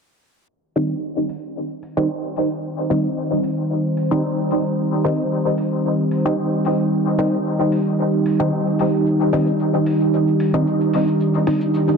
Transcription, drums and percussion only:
0, 0, Header, 1, 2, 480
1, 0, Start_track
1, 0, Key_signature, -3, "minor"
1, 0, Tempo, 535714
1, 439, Time_signature, 4, 2, 24, 8
1, 10726, End_track
2, 0, Start_track
2, 0, Title_t, "Drums"
2, 678, Note_on_c, 9, 46, 78
2, 768, Note_off_c, 9, 46, 0
2, 1159, Note_on_c, 9, 46, 76
2, 1248, Note_off_c, 9, 46, 0
2, 1638, Note_on_c, 9, 46, 78
2, 1728, Note_off_c, 9, 46, 0
2, 2119, Note_on_c, 9, 46, 77
2, 2208, Note_off_c, 9, 46, 0
2, 2599, Note_on_c, 9, 46, 78
2, 2689, Note_off_c, 9, 46, 0
2, 3080, Note_on_c, 9, 46, 77
2, 3169, Note_off_c, 9, 46, 0
2, 3559, Note_on_c, 9, 46, 84
2, 3649, Note_off_c, 9, 46, 0
2, 4039, Note_on_c, 9, 46, 80
2, 4128, Note_off_c, 9, 46, 0
2, 4518, Note_on_c, 9, 46, 80
2, 4608, Note_off_c, 9, 46, 0
2, 4998, Note_on_c, 9, 46, 77
2, 5088, Note_off_c, 9, 46, 0
2, 5478, Note_on_c, 9, 46, 84
2, 5567, Note_off_c, 9, 46, 0
2, 5958, Note_on_c, 9, 46, 81
2, 6048, Note_off_c, 9, 46, 0
2, 6438, Note_on_c, 9, 46, 80
2, 6528, Note_off_c, 9, 46, 0
2, 6918, Note_on_c, 9, 46, 77
2, 7008, Note_off_c, 9, 46, 0
2, 7399, Note_on_c, 9, 46, 85
2, 7489, Note_off_c, 9, 46, 0
2, 7879, Note_on_c, 9, 46, 78
2, 7968, Note_off_c, 9, 46, 0
2, 8119, Note_on_c, 9, 82, 60
2, 8209, Note_off_c, 9, 82, 0
2, 8246, Note_on_c, 9, 82, 37
2, 8335, Note_off_c, 9, 82, 0
2, 8359, Note_on_c, 9, 46, 78
2, 8448, Note_off_c, 9, 46, 0
2, 8481, Note_on_c, 9, 82, 67
2, 8571, Note_off_c, 9, 82, 0
2, 8597, Note_on_c, 9, 82, 62
2, 8687, Note_off_c, 9, 82, 0
2, 8727, Note_on_c, 9, 82, 36
2, 8816, Note_off_c, 9, 82, 0
2, 8838, Note_on_c, 9, 46, 80
2, 8927, Note_off_c, 9, 46, 0
2, 8961, Note_on_c, 9, 82, 67
2, 9051, Note_off_c, 9, 82, 0
2, 9082, Note_on_c, 9, 82, 64
2, 9172, Note_off_c, 9, 82, 0
2, 9208, Note_on_c, 9, 82, 33
2, 9298, Note_off_c, 9, 82, 0
2, 9318, Note_on_c, 9, 46, 79
2, 9408, Note_off_c, 9, 46, 0
2, 9445, Note_on_c, 9, 82, 69
2, 9534, Note_off_c, 9, 82, 0
2, 9561, Note_on_c, 9, 82, 65
2, 9650, Note_off_c, 9, 82, 0
2, 9684, Note_on_c, 9, 82, 40
2, 9773, Note_off_c, 9, 82, 0
2, 9798, Note_on_c, 9, 46, 78
2, 9888, Note_off_c, 9, 46, 0
2, 9923, Note_on_c, 9, 82, 73
2, 10012, Note_off_c, 9, 82, 0
2, 10037, Note_on_c, 9, 82, 60
2, 10126, Note_off_c, 9, 82, 0
2, 10162, Note_on_c, 9, 82, 32
2, 10252, Note_off_c, 9, 82, 0
2, 10278, Note_on_c, 9, 46, 76
2, 10367, Note_off_c, 9, 46, 0
2, 10401, Note_on_c, 9, 82, 69
2, 10491, Note_off_c, 9, 82, 0
2, 10521, Note_on_c, 9, 82, 65
2, 10610, Note_off_c, 9, 82, 0
2, 10645, Note_on_c, 9, 82, 35
2, 10726, Note_off_c, 9, 82, 0
2, 10726, End_track
0, 0, End_of_file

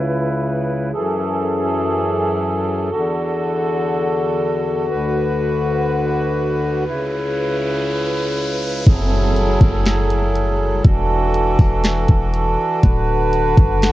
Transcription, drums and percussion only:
0, 0, Header, 1, 2, 480
1, 0, Start_track
1, 0, Key_signature, 3, "minor"
1, 0, Tempo, 495868
1, 901, Time_signature, 4, 2, 24, 8
1, 13475, End_track
2, 0, Start_track
2, 0, Title_t, "Drums"
2, 8582, Note_on_c, 9, 36, 114
2, 8582, Note_on_c, 9, 42, 72
2, 8679, Note_off_c, 9, 36, 0
2, 8679, Note_off_c, 9, 42, 0
2, 9063, Note_on_c, 9, 42, 64
2, 9160, Note_off_c, 9, 42, 0
2, 9300, Note_on_c, 9, 36, 100
2, 9303, Note_on_c, 9, 42, 71
2, 9397, Note_off_c, 9, 36, 0
2, 9399, Note_off_c, 9, 42, 0
2, 9540, Note_on_c, 9, 42, 78
2, 9548, Note_on_c, 9, 38, 113
2, 9637, Note_off_c, 9, 42, 0
2, 9645, Note_off_c, 9, 38, 0
2, 9779, Note_on_c, 9, 42, 71
2, 9876, Note_off_c, 9, 42, 0
2, 10023, Note_on_c, 9, 42, 71
2, 10120, Note_off_c, 9, 42, 0
2, 10500, Note_on_c, 9, 42, 69
2, 10501, Note_on_c, 9, 36, 111
2, 10596, Note_off_c, 9, 42, 0
2, 10598, Note_off_c, 9, 36, 0
2, 10981, Note_on_c, 9, 42, 69
2, 11078, Note_off_c, 9, 42, 0
2, 11220, Note_on_c, 9, 36, 109
2, 11223, Note_on_c, 9, 46, 55
2, 11316, Note_off_c, 9, 36, 0
2, 11320, Note_off_c, 9, 46, 0
2, 11459, Note_on_c, 9, 42, 80
2, 11467, Note_on_c, 9, 38, 118
2, 11556, Note_off_c, 9, 42, 0
2, 11564, Note_off_c, 9, 38, 0
2, 11698, Note_on_c, 9, 42, 72
2, 11703, Note_on_c, 9, 36, 81
2, 11795, Note_off_c, 9, 42, 0
2, 11800, Note_off_c, 9, 36, 0
2, 11943, Note_on_c, 9, 42, 69
2, 12039, Note_off_c, 9, 42, 0
2, 12421, Note_on_c, 9, 42, 69
2, 12422, Note_on_c, 9, 36, 113
2, 12517, Note_off_c, 9, 42, 0
2, 12519, Note_off_c, 9, 36, 0
2, 12903, Note_on_c, 9, 42, 66
2, 13000, Note_off_c, 9, 42, 0
2, 13141, Note_on_c, 9, 36, 107
2, 13145, Note_on_c, 9, 42, 70
2, 13237, Note_off_c, 9, 36, 0
2, 13242, Note_off_c, 9, 42, 0
2, 13381, Note_on_c, 9, 42, 75
2, 13389, Note_on_c, 9, 38, 119
2, 13475, Note_off_c, 9, 38, 0
2, 13475, Note_off_c, 9, 42, 0
2, 13475, End_track
0, 0, End_of_file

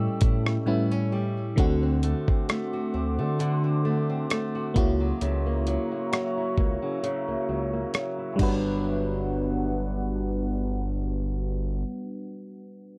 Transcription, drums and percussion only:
0, 0, Header, 1, 2, 480
1, 0, Start_track
1, 0, Key_signature, 1, "major"
1, 0, Tempo, 909091
1, 832, Time_signature, 4, 2, 24, 8
1, 6854, End_track
2, 0, Start_track
2, 0, Title_t, "Drums"
2, 109, Note_on_c, 9, 42, 73
2, 114, Note_on_c, 9, 36, 97
2, 162, Note_off_c, 9, 42, 0
2, 167, Note_off_c, 9, 36, 0
2, 246, Note_on_c, 9, 37, 86
2, 298, Note_off_c, 9, 37, 0
2, 833, Note_on_c, 9, 36, 109
2, 833, Note_on_c, 9, 42, 71
2, 886, Note_off_c, 9, 36, 0
2, 886, Note_off_c, 9, 42, 0
2, 1071, Note_on_c, 9, 42, 57
2, 1124, Note_off_c, 9, 42, 0
2, 1204, Note_on_c, 9, 36, 91
2, 1257, Note_off_c, 9, 36, 0
2, 1315, Note_on_c, 9, 42, 56
2, 1318, Note_on_c, 9, 37, 105
2, 1367, Note_off_c, 9, 42, 0
2, 1371, Note_off_c, 9, 37, 0
2, 1795, Note_on_c, 9, 42, 58
2, 1848, Note_off_c, 9, 42, 0
2, 2272, Note_on_c, 9, 42, 69
2, 2278, Note_on_c, 9, 37, 102
2, 2325, Note_off_c, 9, 42, 0
2, 2330, Note_off_c, 9, 37, 0
2, 2513, Note_on_c, 9, 36, 107
2, 2513, Note_on_c, 9, 42, 73
2, 2566, Note_off_c, 9, 36, 0
2, 2566, Note_off_c, 9, 42, 0
2, 2753, Note_on_c, 9, 42, 65
2, 2806, Note_off_c, 9, 42, 0
2, 2992, Note_on_c, 9, 42, 54
2, 3045, Note_off_c, 9, 42, 0
2, 3235, Note_on_c, 9, 42, 54
2, 3239, Note_on_c, 9, 37, 100
2, 3288, Note_off_c, 9, 42, 0
2, 3291, Note_off_c, 9, 37, 0
2, 3472, Note_on_c, 9, 36, 81
2, 3525, Note_off_c, 9, 36, 0
2, 3716, Note_on_c, 9, 42, 57
2, 3769, Note_off_c, 9, 42, 0
2, 4191, Note_on_c, 9, 42, 67
2, 4197, Note_on_c, 9, 37, 100
2, 4244, Note_off_c, 9, 42, 0
2, 4250, Note_off_c, 9, 37, 0
2, 4431, Note_on_c, 9, 49, 81
2, 4432, Note_on_c, 9, 36, 99
2, 4484, Note_off_c, 9, 49, 0
2, 4485, Note_off_c, 9, 36, 0
2, 6854, End_track
0, 0, End_of_file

